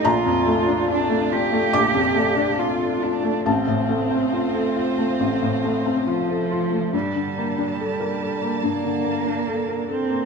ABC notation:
X:1
M:4/4
L:1/16
Q:1/4=71
K:Gm
V:1 name="String section"
[A,Fd]16 | [A,Fc]16 | [B,da]16 |]
V:2 name="Cello"
F4 D2 G6 F2 D2 | C12 F,4 | G,8 B,6 C2 |]
V:3 name="Felt piano"
b8 d'8 | a12 z4 | z16 |]
V:4 name="Felt piano"
B,,, F,, A, D F A, F A, B,,, F,, A, D F A F A, | A,,, A,, A, C F A F A, A,,, A,, A, C F A F A, | G,, D, B, D A B A B, G,, D, B, D A B A B, |]